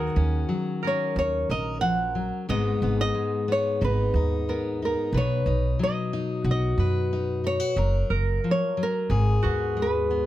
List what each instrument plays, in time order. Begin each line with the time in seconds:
Already playing: upright bass D#2, steel-string acoustic guitar D#3 F#3 F#4, harp G#4, nylon-string guitar A#4
0.16 upright bass D#2, steel-string acoustic guitar C#4
0.49 steel-string acoustic guitar F#3
0.83 steel-string acoustic guitar C#4, harp A#4
0.87 nylon-string guitar C#5
1.16 upright bass D#2, nylon-string guitar C#5
1.49 upright bass A#1, steel-string acoustic guitar A#4, nylon-string guitar D#5
1.81 steel-string acoustic guitar F3, nylon-string guitar F#5
2.15 steel-string acoustic guitar F#3
2.49 upright bass G#1, steel-string acoustic guitar G#2 G#3 B3 D#4, nylon-string guitar D#5
2.82 upright bass G#1, steel-string acoustic guitar B3
3.01 nylon-string guitar D#5
3.15 steel-string acoustic guitar G#3
3.48 steel-string acoustic guitar B3
3.52 nylon-string guitar C#5
3.81 upright bass G#1, steel-string acoustic guitar D#4, nylon-string guitar B4
4.14 upright bass D#2, steel-string acoustic guitar D#4
4.49 steel-string acoustic guitar B3, nylon-string guitar A#4
4.82 steel-string acoustic guitar D#4, nylon-string guitar A#4
5.13 upright bass B1, steel-string acoustic guitar B2 B4
5.17 nylon-string guitar C#5
5.46 upright bass B1, steel-string acoustic guitar D#4
5.79 steel-string acoustic guitar F#3
5.83 nylon-string guitar D#5
6.13 steel-string acoustic guitar D#4
6.44 upright bass B1, steel-string acoustic guitar F#4
6.51 nylon-string guitar D#5
6.78 upright bass F#2, steel-string acoustic guitar B4
7.13 steel-string acoustic guitar D#4
7.44 steel-string acoustic guitar D#4, nylon-string guitar C#5
7.60 steel-string acoustic guitar F#4
7.76 upright bass F#1, steel-string acoustic guitar F#3 A#4
8.10 upright bass F#1, harp A#4
8.44 steel-string acoustic guitar F3
8.51 nylon-string guitar C#5
8.77 steel-string acoustic guitar F#3
8.83 nylon-string guitar A#4
9.10 upright bass G#1, steel-string acoustic guitar G#2 G#4
9.43 upright bass D#2, steel-string acoustic guitar B3, harp F#4
9.77 steel-string acoustic guitar G#3
9.82 nylon-string guitar B4
10.10 steel-string acoustic guitar B3